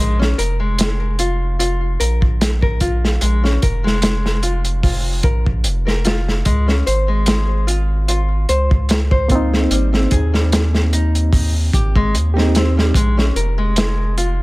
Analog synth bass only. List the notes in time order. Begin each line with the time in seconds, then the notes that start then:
Already playing: A#1
0.39 F1
2.00 A#1
3.22 A#1
3.63 F1
5.24 A#1
5.65 F1
6.46 C#2
6.87 G#1
8.49 C#2
9.71 G#1
10.12 D#2
11.73 G#1
12.15 D#2
12.95 A#1
13.35 F1